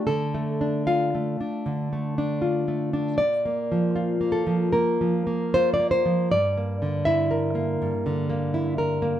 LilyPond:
\new Staff \with { instrumentName = "Nylon-string guitar" } { \time 4/4 \key d \minor \tempo 4 = 78 << { a'4 f''2~ f''8 r8 | d''4. a'8 bes'4 c''16 d''16 c''8 | d''4 e''2. | } \\ { \tuplet 3/2 { d8 a8 d'8 f'8 a8 d'8 d8 a8 d'8 f'8 a8 d'8 } | \tuplet 3/2 { bes,8 bes8 f8 f'8 bes8 f8 bes8 f8 bes8 f'8 bes8 f8 } | \tuplet 3/2 { g,8 bes8 d8 e'8 bes'8 bes8 g,8 d8 bes8 e'8 bes'8 bes8 } | } >> }